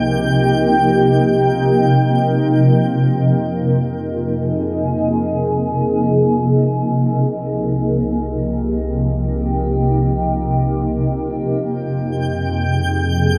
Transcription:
Already playing: C2 C3 F3 A#3 D#4 G4 G5 G6
2.42 F2
3.81 G#4
7.02 C2 C3
7.86 G4
11.63 F2 G5 G6
11.90 F3
12.22 G#4
12.32 D#4
12.36 A#3

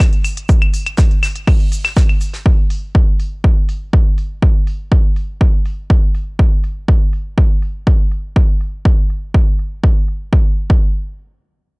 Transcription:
0.00 kick, snare, closed hi-hat, claves, shaker
0.13 closed hi-hat
0.24 open hi-hat, claves, shaker
0.37 closed hi-hat
0.49 kick, closed hi-hat, shaker
0.62 closed hi-hat, claves
0.74 open hi-hat, shaker
0.86 closed hi-hat, claves
0.97 kick, snare, closed hi-hat, shaker
1.11 closed hi-hat
1.23 snare, open hi-hat, claves, shaker
1.35 closed hi-hat
1.47 kick, closed hi-hat, open hi-hat, claves
1.60 closed hi-hat
1.72 open hi-hat, shaker
1.84 snare, closed hi-hat, claves
1.96 kick, snare, closed hi-hat, shaker
2.09 closed hi-hat, claves
2.21 open hi-hat, shaker
2.34 snare, closed hi-hat
2.46 kick
2.70 open hi-hat
2.95 kick
3.20 open hi-hat
3.44 kick
3.69 open hi-hat
3.93 kick
4.18 open hi-hat
4.42 kick
4.67 open hi-hat
4.92 kick
5.16 open hi-hat
5.41 kick
5.66 open hi-hat
5.90 kick
6.15 open hi-hat
6.39 kick
6.64 open hi-hat
6.88 kick
7.13 open hi-hat
7.38 kick
7.62 open hi-hat
7.87 kick
8.11 open hi-hat
8.36 kick
8.61 open hi-hat
8.85 kick
9.10 open hi-hat
9.34 kick
9.59 open hi-hat
9.84 kick
10.08 open hi-hat
10.33 kick
10.70 kick

